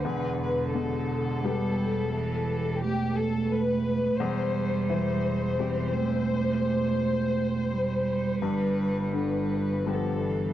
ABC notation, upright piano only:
X:1
M:3/4
L:1/8
Q:1/4=86
K:C
V:1 name="Upright piano" clef=bass
E,,2 B,,2 [G,B,G]2- | [G,B,G]6 | E,,2 E,2 [G,CG]2- | [G,CG]6 |
G,,2 D,2 [G,B,G]2 |]